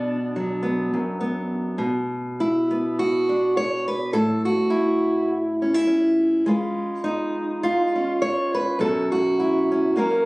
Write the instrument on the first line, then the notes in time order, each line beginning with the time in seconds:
steel-string acoustic guitar
Already playing: B2 B3 D4
0.36 F#3
0.63 B3
0.94 F#2
1.21 B3
1.78 B2
2.40 E4
2.71 B3
2.99 F#4
3.29 D4
3.57 C#5
3.88 B4
4.13 A2 A4
4.45 F#4
4.70 E4
5.62 C#4
5.74 E4
5.87 C#4
6.46 G#3 C#4 F4 B4
7.04 D#4
7.63 F4
7.96 C#4
8.22 C#5
8.54 B4
8.79 F#2 B2 C#4 F#4 A4
9.12 F#4
9.40 E4
9.72 C#4
9.96 F#2 A#3 C#4 F#4 A#4